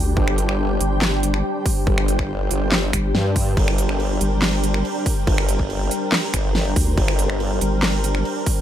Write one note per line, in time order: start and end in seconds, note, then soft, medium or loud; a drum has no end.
0.00 0.15 D2 loud
0.00 8.61 G3 medium
0.00 8.61 D4 medium
0.00 3.55 G4 medium
0.00 8.61 G4 medium
0.00 8.61 C5 medium
0.00 8.61 G5 medium
0.17 0.79 G1 loud
0.17 kick loud
0.28 finger snap medium
0.38 closed hi-hat medium
0.49 finger snap medium
0.81 1.43 G1 loud
0.81 closed hi-hat medium
1.02 snare loud
1.02 clap loud
1.23 closed hi-hat medium
1.34 finger snap medium
1.66 kick loud
1.66 open hi-hat medium
1.87 2.49 G1 loud
1.87 kick loud
1.98 finger snap medium
2.08 closed hi-hat medium
2.19 finger snap medium
2.19 kick medium
2.51 2.92 G1 loud
2.51 closed hi-hat medium
2.72 snare loud
2.72 clap medium
2.93 3.13 G1 loud
2.93 finger snap medium
2.93 kick medium
2.93 closed hi-hat medium
3.15 3.55 G2 loud
3.15 snare medium
3.36 kick loud
3.36 open hi-hat medium
3.57 4.19 G1 loud
3.57 8.61 A#4 loud
3.57 kick loud
3.57 crash medium
3.68 finger snap medium
3.78 closed hi-hat medium
3.89 finger snap medium
4.00 crash soft
4.21 4.83 G1 loud
4.21 closed hi-hat medium
4.42 snare loud
4.42 clap medium
4.42 crash medium
4.64 closed hi-hat medium
4.74 finger snap medium
4.85 crash soft
5.06 kick loud
5.06 open hi-hat medium
5.27 5.89 G1 loud
5.27 kick loud
5.27 crash medium
5.38 finger snap medium
5.49 closed hi-hat medium
5.59 kick medium
5.70 crash soft
5.91 closed hi-hat medium
6.12 snare loud
6.12 clap medium
6.12 crash medium
6.34 6.75 G1 loud
6.34 finger snap medium
6.34 kick medium
6.34 closed hi-hat medium
6.55 snare medium
6.55 crash medium
6.76 6.96 D2 loud
6.76 kick loud
6.76 open hi-hat loud
6.97 7.60 G1 loud
6.97 kick loud
6.97 crash medium
7.08 finger snap medium
7.19 closed hi-hat medium
7.30 finger snap medium
7.40 crash soft
7.61 8.24 G1 loud
7.61 closed hi-hat medium
7.83 snare loud
7.83 clap medium
7.83 crash medium
8.04 closed hi-hat medium
8.15 finger snap medium
8.25 crash medium
8.46 kick loud
8.46 open hi-hat medium